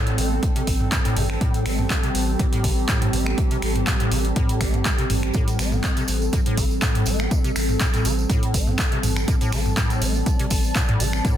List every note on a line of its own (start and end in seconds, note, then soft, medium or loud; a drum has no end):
0.00 0.20 A2 loud
0.00 11.37 G3 medium
0.00 11.37 C4 medium
0.00 1.40 A4 medium
0.00 11.37 A4 medium
0.00 8.69 G5 medium
0.07 closed hi-hat soft
0.18 0.39 A1 medium
0.18 0.33 A3 medium
0.18 open hi-hat medium
0.31 0.44 C4 medium
0.43 0.50 G3 medium
0.43 kick loud
0.43 closed hi-hat medium
0.56 0.62 C3 medium
0.56 closed hi-hat soft
0.67 0.88 A1 medium
0.67 kick medium
0.67 open hi-hat loud
0.80 mid tom medium
0.92 0.99 A2 medium
0.92 kick loud
0.92 clap loud
0.92 closed hi-hat medium
1.05 1.18 A2 loud
1.05 closed hi-hat medium
1.16 1.37 A1 loud
1.16 1.24 D3 medium
1.16 mid tom medium
1.16 open hi-hat medium
1.30 finger snap medium
1.41 1.67 A2 loud
1.41 5.33 G4 medium
1.41 kick loud
1.41 closed hi-hat medium
1.54 closed hi-hat medium
1.66 1.86 A1 loud
1.66 1.80 A3 medium
1.66 finger snap medium
1.66 open hi-hat loud
1.79 1.92 C4 medium
1.79 mid tom medium
1.90 1.98 G3 medium
1.90 kick loud
1.90 clap loud
1.90 closed hi-hat medium
2.03 2.10 C3 medium
2.03 closed hi-hat medium
2.15 2.35 A1 medium
2.15 open hi-hat medium
2.39 2.47 A2 medium
2.39 kick loud
2.39 closed hi-hat medium
2.53 2.66 A2 loud
2.53 closed hi-hat medium
2.64 2.85 A1 medium
2.64 2.71 D3 medium
2.64 kick medium
2.64 open hi-hat loud
2.89 3.15 A2 loud
2.89 kick loud
2.89 clap loud
2.89 closed hi-hat medium
3.02 closed hi-hat medium
3.02 mid tom medium
3.13 3.34 A1 loud
3.13 3.28 A3 medium
3.13 open hi-hat medium
3.26 3.39 C4 medium
3.26 finger snap medium
3.38 3.45 G3 medium
3.38 kick loud
3.38 closed hi-hat medium
3.51 3.57 C3 medium
3.51 closed hi-hat medium
3.62 3.83 A1 medium
3.62 finger snap medium
3.62 open hi-hat loud
3.76 closed hi-hat soft
3.76 mid tom medium
3.87 3.94 A2 medium
3.87 kick loud
3.87 clap loud
3.87 closed hi-hat medium
4.00 4.13 A2 loud
4.00 closed hi-hat medium
4.12 4.32 A1 medium
4.12 4.19 D3 medium
4.12 open hi-hat medium
4.25 closed hi-hat soft
4.36 4.62 A2 loud
4.36 kick loud
4.36 closed hi-hat medium
4.49 closed hi-hat medium
4.61 4.81 A1 medium
4.61 4.75 A3 medium
4.61 finger snap medium
4.61 kick medium
4.61 open hi-hat loud
4.74 4.87 C4 medium
4.74 closed hi-hat soft
4.74 mid tom medium
4.85 4.93 G3 medium
4.85 kick loud
4.85 clap loud
4.85 closed hi-hat medium
4.98 5.05 C3 medium
4.98 closed hi-hat medium
5.10 5.31 A1 loud
5.10 mid tom medium
5.10 open hi-hat medium
5.23 finger snap medium
5.23 closed hi-hat soft
5.33 5.61 A2 loud
5.33 9.27 A4 medium
5.33 kick loud
5.33 closed hi-hat medium
5.33 tambourine medium
5.48 closed hi-hat medium
5.48 tambourine soft
5.59 5.80 A1 loud
5.59 5.74 A3 medium
5.59 finger snap medium
5.59 open hi-hat loud
5.59 tambourine medium
5.72 5.85 C4 medium
5.72 mid tom medium
5.72 tambourine soft
5.84 5.91 G3 medium
5.84 kick loud
5.84 clap loud
5.84 closed hi-hat medium
5.84 tambourine soft
5.97 6.03 C3 medium
5.97 closed hi-hat medium
5.97 tambourine soft
6.08 6.29 A1 medium
6.08 open hi-hat medium
6.08 tambourine medium
6.22 tambourine soft
6.33 6.40 A2 medium
6.33 kick loud
6.33 closed hi-hat medium
6.33 tambourine soft
6.46 6.59 A2 loud
6.46 closed hi-hat medium
6.57 6.78 A1 medium
6.57 6.65 D3 medium
6.57 kick medium
6.57 open hi-hat loud
6.57 tambourine medium
6.71 tambourine soft
6.82 7.08 A2 loud
6.82 kick loud
6.82 clap loud
6.82 closed hi-hat medium
6.82 tambourine soft
6.95 closed hi-hat medium
6.95 mid tom medium
7.06 7.27 A1 medium
7.06 7.21 A3 medium
7.06 open hi-hat medium
7.06 tambourine medium
7.19 7.33 C4 medium
7.19 finger snap medium
7.19 tambourine soft
7.31 7.38 G3 medium
7.31 kick loud
7.31 closed hi-hat medium
7.31 tambourine medium
7.44 7.51 C3 medium
7.44 closed hi-hat medium
7.44 tambourine soft
7.56 7.76 A1 medium
7.56 finger snap medium
7.56 open hi-hat loud
7.56 tambourine medium
7.69 mid tom medium
7.69 tambourine soft
7.80 7.88 A2 medium
7.80 kick loud
7.80 clap loud
7.80 closed hi-hat medium
7.80 tambourine medium
7.94 8.06 A2 loud
7.94 closed hi-hat soft
7.94 tambourine soft
8.05 8.26 A1 medium
8.05 8.12 D3 medium
8.05 open hi-hat medium
8.05 tambourine medium
8.19 tambourine soft
8.29 8.56 A2 loud
8.29 kick loud
8.29 closed hi-hat medium
8.29 tambourine medium
8.43 closed hi-hat soft
8.53 8.75 A1 medium
8.53 8.69 A3 medium
8.53 11.37 A5 medium
8.53 kick medium
8.53 open hi-hat loud
8.53 tambourine medium
8.67 8.80 C4 medium
8.67 mid tom medium
8.67 tambourine soft
8.78 8.86 G3 medium
8.78 kick loud
8.78 clap loud
8.78 closed hi-hat medium
8.78 tambourine medium
8.92 8.98 C3 medium
8.92 closed hi-hat medium
9.03 9.24 A1 medium
9.03 mid tom medium
9.03 open hi-hat medium
9.03 tambourine medium
9.16 finger snap medium
9.16 tambourine soft
9.28 9.35 A2 medium
9.28 11.37 D5 medium
9.28 kick loud
9.28 closed hi-hat medium
9.28 tambourine medium
9.41 9.54 A2 loud
9.41 closed hi-hat soft
9.41 tambourine soft
9.52 9.73 A1 loud
9.52 9.60 D3 medium
9.52 finger snap medium
9.52 open hi-hat loud
9.52 tambourine medium
9.66 mid tom medium
9.66 tambourine soft
9.77 10.03 A2 loud
9.77 kick loud
9.77 clap loud
9.77 closed hi-hat medium
9.77 tambourine medium
9.90 closed hi-hat soft
9.90 tambourine soft
10.02 10.22 A1 medium
10.02 10.16 A3 medium
10.02 open hi-hat medium
10.02 tambourine medium
10.15 10.28 C4 medium
10.15 tambourine soft
10.26 10.34 G3 medium
10.26 kick loud
10.26 closed hi-hat medium
10.26 tambourine medium
10.39 10.46 C3 medium
10.39 closed hi-hat medium
10.50 10.72 A1 medium
10.50 kick medium
10.50 open hi-hat loud
10.50 tambourine medium
10.64 tambourine soft
10.75 10.83 A2 medium
10.75 kick loud
10.75 clap loud
10.75 closed hi-hat medium
10.75 tambourine medium
10.89 11.02 A2 loud
10.89 closed hi-hat soft
10.89 mid tom medium
11.00 11.21 A1 loud
11.00 11.07 D3 medium
11.00 open hi-hat medium
11.00 tambourine medium
11.13 finger snap medium
11.13 tambourine soft
11.25 11.37 A2 loud
11.25 kick loud
11.25 closed hi-hat medium
11.25 tambourine medium